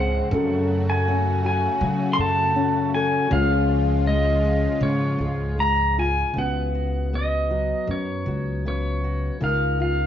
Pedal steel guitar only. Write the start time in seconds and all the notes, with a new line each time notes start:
Already playing: F#5
0.90 G#5
1.46 G#5
2.13 C6
2.21 A5
2.94 G#5
3.33 F5
4.07 D#5
4.83 C#5
5.60 A#5
5.99 G#5
6.38 F#5
7.15 D#5
7.91 C#5
8.68 C#5
9.44 F5
9.82 F5